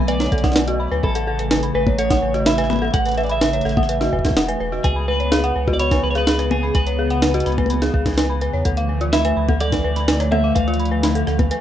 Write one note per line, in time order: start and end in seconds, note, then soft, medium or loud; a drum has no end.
0.00 0.28 B1 loud
0.00 0.99 D3 medium
0.00 1.00 F#3 medium
0.00 4.81 A3 medium
0.00 1.00 B3 medium
0.00 1.02 G#5 loud
0.08 0.17 B4 loud
0.08 0.76 D5 medium
0.08 closed hi-hat medium
0.20 0.29 C#5 medium
0.20 snare medium
0.20 closed hi-hat soft
0.26 closed hi-hat soft
0.32 0.87 B1 loud
0.32 0.37 A4 loud
0.32 kick loud
0.32 closed hi-hat soft
0.38 closed hi-hat soft
0.44 0.55 F#5 loud
0.44 kick loud
0.44 cross-stick soft
0.44 snare medium
0.44 closed hi-hat soft
0.52 snare medium
0.56 0.61 B4 medium
0.56 snare loud
0.56 closed hi-hat medium
0.60 snare soft
0.68 0.77 F#4 loud
0.68 closed hi-hat medium
0.80 0.91 B5 medium
0.91 1.01 D2 loud
0.91 1.01 B4 loud
1.03 1.71 A1 loud
1.03 4.80 C#3 medium
1.03 4.80 E3 medium
1.03 1.75 A4 medium
1.03 1.13 B5 medium
1.03 kick loud
1.15 1.21 A4 loud
1.15 closed hi-hat medium
1.27 1.39 A4 loud
1.39 1.48 B4 medium
1.39 closed hi-hat soft
1.51 1.60 B4 loud
1.51 snare loud
1.51 closed hi-hat medium
1.63 1.68 B5 medium
1.63 closed hi-hat medium
1.75 2.18 A1 loud
1.75 1.84 B4 loud
1.75 1.98 B4 medium
1.87 1.96 C#5 medium
1.87 kick loud
1.87 high tom medium
1.99 2.04 A4 loud
1.99 2.48 C#5 loud
1.99 closed hi-hat medium
2.10 2.22 F#5 loud
2.10 kick loud
2.10 cross-stick soft
2.10 snare medium
2.10 closed hi-hat medium
2.22 2.90 A1 loud
2.22 2.28 B4 medium
2.34 2.43 F#4 loud
2.34 cross-stick soft
2.34 closed hi-hat soft
2.46 2.91 E5 loud
2.46 2.58 B5 medium
2.46 snare loud
2.46 closed hi-hat medium
2.58 2.67 B4 loud
2.58 cross-stick soft
2.58 closed hi-hat medium
2.64 cross-stick soft
2.70 2.79 B5 medium
2.70 cross-stick soft
2.70 high tom medium
2.73 cross-stick soft
2.73 high tom medium
2.76 high tom medium
2.79 2.87 A4 loud
2.79 high tom soft
2.82 high tom soft
2.85 high tom soft
2.88 high tom soft
2.91 3.61 A1 loud
2.91 3.05 A4 loud
2.91 3.17 F#5 loud
2.91 kick loud
2.91 closed hi-hat medium
2.91 high tom soft
3.06 3.15 B4 medium
3.06 closed hi-hat soft
3.09 closed hi-hat soft
3.12 closed hi-hat soft
3.14 closed hi-hat soft
3.18 3.27 B4 loud
3.18 3.24 E5 loud
3.18 closed hi-hat soft
3.21 closed hi-hat soft
3.23 3.31 D5 medium
3.23 closed hi-hat soft
3.26 3.35 B5 medium
3.26 closed hi-hat soft
3.29 4.56 E5 loud
3.29 closed hi-hat soft
3.41 3.51 B4 loud
3.41 snare loud
3.41 closed hi-hat medium
3.53 3.62 C#5 medium
3.53 closed hi-hat soft
3.61 4.09 A1 loud
3.61 3.71 A4 loud
3.61 closed hi-hat soft
3.65 cross-stick soft
3.65 closed hi-hat soft
3.71 cross-stick soft
3.77 3.88 F#5 loud
3.77 kick loud
3.77 high tom medium
3.83 cross-stick soft
3.89 3.94 B4 medium
3.89 closed hi-hat medium
4.01 4.10 F#4 loud
4.01 snare medium
4.13 4.22 E1 medium
4.13 4.24 B4 loud
4.13 kick medium
4.19 kick medium
4.25 4.30 A4 medium
4.25 kick loud
4.25 cross-stick soft
4.25 snare medium
4.25 closed hi-hat soft
4.29 kick medium
4.29 cross-stick soft
4.33 4.46 F#5 loud
4.33 cross-stick soft
4.37 4.56 E1 medium
4.37 cross-stick soft
4.37 snare loud
4.37 closed hi-hat medium
4.41 cross-stick soft
4.45 4.58 B4 loud
4.45 cross-stick soft
4.45 closed hi-hat medium
4.60 4.79 E1 medium
4.60 4.66 B4 loud
4.72 4.81 F#4 loud
4.84 5.52 C#2 loud
4.84 8.62 C#3 medium
4.84 11.61 E3 medium
4.84 8.62 B3 medium
4.84 5.08 G#4 loud
4.84 4.93 B4 loud
4.84 kick loud
4.84 closed hi-hat medium
4.96 5.02 B5 medium
5.08 5.17 B4 loud
5.08 5.73 B4 loud
5.20 5.29 C#5 medium
5.20 closed hi-hat soft
5.32 5.37 G#4 loud
5.32 snare loud
5.32 closed hi-hat medium
5.44 5.55 F#5 loud
5.44 closed hi-hat soft
5.56 5.99 C#2 loud
5.56 5.61 B4 medium
5.68 5.77 F#4 loud
5.68 kick loud
5.68 high tom medium
5.73 5.79 D5 medium
5.79 6.02 C#5 loud
5.79 5.91 B5 medium
5.79 closed hi-hat medium
5.91 6.01 B4 loud
5.91 kick loud
5.91 cross-stick soft
5.91 snare medium
5.91 closed hi-hat medium
6.03 6.71 C#2 loud
6.03 6.10 B4 loud
6.03 6.13 B5 medium
6.11 6.17 C#5 medium
6.15 6.21 G#4 loud
6.15 6.49 B4 loud
6.15 cross-stick soft
6.15 closed hi-hat soft
6.27 6.39 G#4 loud
6.27 snare loud
6.27 closed hi-hat medium
6.39 6.48 B4 medium
6.39 cross-stick medium
6.39 closed hi-hat medium
6.51 6.76 G#4 medium
6.51 6.60 B4 loud
6.51 high tom loud
6.63 6.68 B5 medium
6.75 7.42 C#2 loud
6.75 6.84 B4 loud
6.75 7.66 B4 loud
6.75 kick loud
6.75 closed hi-hat medium
6.87 6.96 C#5 medium
6.87 closed hi-hat medium
6.99 7.04 G#4 loud
7.10 7.22 F#5 loud
7.10 closed hi-hat soft
7.22 7.28 B4 medium
7.22 snare loud
7.22 closed hi-hat medium
7.34 7.43 F#4 loud
7.34 closed hi-hat soft
7.40 closed hi-hat soft
7.46 7.90 C#2 loud
7.46 7.58 B5 medium
7.46 cross-stick medium
7.46 closed hi-hat soft
7.52 closed hi-hat soft
7.58 7.67 B4 loud
7.58 kick loud
7.58 high tom medium
7.66 7.79 B5 medium
7.66 closed hi-hat medium
7.66 high tom medium
7.74 high tom medium
7.82 7.87 G#4 loud
7.82 snare medium
7.82 closed hi-hat medium
7.94 8.49 C#2 loud
7.94 8.05 G#4 loud
7.94 kick loud
8.06 8.15 B4 medium
8.06 kick loud
8.06 cross-stick soft
8.06 snare medium
8.06 closed hi-hat soft
8.08 cross-stick soft
8.11 cross-stick soft
8.13 cross-stick soft
8.15 8.27 B4 loud
8.15 cross-stick soft
8.15 snare loud
8.15 closed hi-hat medium
8.30 8.35 B5 medium
8.41 8.51 B4 loud
8.41 closed hi-hat medium
8.53 8.63 E2 loud
8.53 8.63 C#5 medium
8.65 9.33 D2 loud
8.65 11.61 D3 medium
8.65 11.61 F3 medium
8.65 11.61 A3 medium
8.65 8.71 A4 loud
8.65 kick loud
8.65 closed hi-hat medium
8.77 8.89 F5 loud
8.77 closed hi-hat medium
8.89 8.95 B4 medium
9.01 9.10 F4 loud
9.01 closed hi-hat soft
9.13 9.57 E5 loud
9.13 9.24 B5 medium
9.13 snare loud
9.13 closed hi-hat medium
9.25 9.34 B4 loud
9.25 closed hi-hat medium
9.37 9.80 D2 loud
9.37 9.46 B5 medium
9.49 9.54 A4 loud
9.49 kick loud
9.49 high tom medium
9.60 9.72 A4 loud
9.60 10.31 D5 loud
9.60 closed hi-hat medium
9.72 9.82 B4 medium
9.72 kick loud
9.72 cross-stick soft
9.72 snare medium
9.72 closed hi-hat medium
9.84 10.52 D2 loud
9.84 9.93 B4 loud
9.96 10.02 B5 medium
9.96 cross-stick soft
9.96 closed hi-hat soft
10.08 10.17 B4 loud
10.08 snare loud
10.08 closed hi-hat medium
10.20 10.29 C#5 medium
10.20 cross-stick medium
10.20 closed hi-hat medium
10.32 10.37 A4 loud
10.32 10.55 E5 loud
10.32 high tom loud
10.44 10.55 F5 loud
10.55 11.23 D2 loud
10.55 10.61 B4 medium
10.55 11.61 F5 loud
10.55 kick loud
10.55 closed hi-hat medium
10.68 10.77 F4 loud
10.68 closed hi-hat soft
10.74 closed hi-hat soft
10.80 10.91 B5 medium
10.80 closed hi-hat soft
10.85 closed hi-hat soft
10.91 11.01 B4 loud
11.03 11.12 B5 medium
11.03 cross-stick medium
11.03 snare loud
11.03 closed hi-hat medium
11.15 11.21 A4 loud
11.15 closed hi-hat medium
11.27 11.51 D2 loud
11.27 11.39 A4 loud
11.27 cross-stick medium
11.39 11.48 B4 medium
11.39 kick loud
11.39 closed hi-hat soft
11.39 high tom medium
11.51 11.60 B4 loud
11.51 closed hi-hat medium